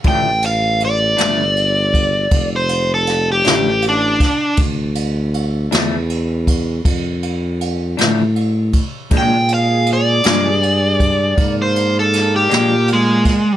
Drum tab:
RD |xxxxxxxxxxxx|xxxxxxxxxxxx|xxxxxxxxxxxx|
SD |---o----oo-o|---o-----o--|---o----oo-o|
BD |o----oo----o|o----oo----o|o----oo----o|